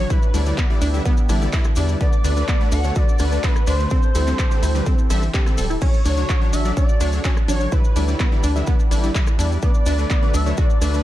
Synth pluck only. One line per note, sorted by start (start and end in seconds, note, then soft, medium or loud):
0.10 0.17 E4 medium
0.34 0.41 D4 medium
0.58 0.65 B3 medium
0.82 0.89 D4 loud
1.05 1.12 B3 loud
1.29 1.36 D4 medium
1.53 1.60 E4 medium
1.77 1.84 D4 medium
2.01 2.08 B3 medium
2.24 2.31 D4 loud
2.48 2.55 B3 loud
2.72 2.79 D4 medium
2.96 3.03 F#4 medium
3.20 3.27 D4 medium
3.44 3.51 B3 medium
3.67 3.74 D4 loud
3.91 3.98 C4 loud
4.15 4.22 E4 medium
4.39 4.46 G4 medium
4.63 4.70 E4 medium
4.86 4.93 C4 medium
5.10 5.17 E5 loud
5.34 5.38 G4 medium
5.58 5.62 A4 medium
5.70 5.77 E4 medium
5.82 5.89 C#4 loud
6.05 6.12 D4 medium
6.29 6.36 F#4 medium
6.53 6.60 D4 medium
6.77 6.84 C#4 medium
7.01 7.08 D4 loud
7.25 7.32 C#4 loud
7.48 7.55 D4 medium
7.72 7.79 E4 medium
7.96 8.03 D4 medium
8.20 8.27 B3 medium
8.44 8.51 D4 medium
8.67 8.74 B3 loud
8.91 8.98 D4 medium
9.15 9.22 E4 medium
9.39 9.46 D4 medium
9.63 9.70 B3 medium
9.86 9.93 D4 loud
10.10 10.17 B3 loud
10.34 10.41 D4 medium
10.58 10.65 F#4 medium
10.82 10.89 D4 medium